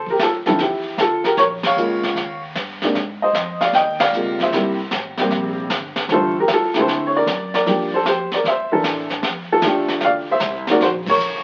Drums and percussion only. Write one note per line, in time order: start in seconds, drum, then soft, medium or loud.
0.06 kick soft
0.19 kick soft
0.19 snare medium
0.19 hi-hat pedal medium
0.46 snare soft
0.59 brush sweep soft
0.59 kick soft
0.59 snare soft
0.98 kick soft
0.98 snare medium
0.98 hi-hat pedal medium
1.24 snare soft
1.37 brush sweep medium
1.37 kick soft
1.37 snare soft
1.63 snare medium
1.63 ride medium
1.77 hi-hat pedal medium
2.03 snare soft
2.16 brush sweep soft
2.16 kick soft
2.16 snare soft
2.55 kick soft
2.55 snare medium
2.55 hi-hat pedal soft
2.82 snare soft
2.94 brush sweep soft
2.94 kick soft
2.94 snare soft
3.34 kick soft
3.34 snare medium
3.34 hi-hat pedal medium
3.61 snare soft
3.73 brush sweep soft
3.73 kick soft
3.73 snare soft
4.00 snare medium
4.00 ride medium
4.13 hi-hat pedal soft
4.39 kick medium
4.39 snare soft
4.52 brush sweep soft
4.52 kick soft
4.52 snare soft
4.91 kick soft
4.91 snare medium
4.91 hi-hat pedal medium
5.17 snare soft
5.30 brush sweep soft
5.30 kick soft
5.30 snare soft
5.70 kick soft
5.70 snare medium
5.70 hi-hat pedal medium
5.96 snare soft
6.09 brush sweep soft
6.09 kick soft
6.09 snare soft
6.48 kick soft
6.48 snare medium
6.48 hi-hat pedal medium
6.74 snare soft
6.87 brush sweep soft
6.87 kick soft
6.87 snare soft
7.27 kick soft
7.27 snare medium
7.27 hi-hat pedal medium
7.54 snare soft
7.66 brush sweep soft
7.66 kick soft
7.66 snare soft
8.05 kick soft
8.05 snare medium
8.05 hi-hat pedal soft
8.32 snare soft
8.44 brush sweep soft
8.44 kick soft
8.44 snare soft
8.84 kick soft
8.84 snare medium
8.84 hi-hat pedal medium
9.10 snare soft
9.23 brush sweep medium
9.23 kick soft
9.23 snare soft
9.62 kick soft
9.62 snare medium
9.62 hi-hat pedal medium
9.88 snare soft
10.01 brush sweep soft
10.01 kick soft
10.01 snare soft
10.40 kick soft
10.40 snare medium
10.40 hi-hat pedal medium
10.67 snare soft
10.80 brush sweep medium
10.80 kick soft
10.80 snare soft
11.06 kick medium
11.06 crash medium
11.20 hi-hat pedal medium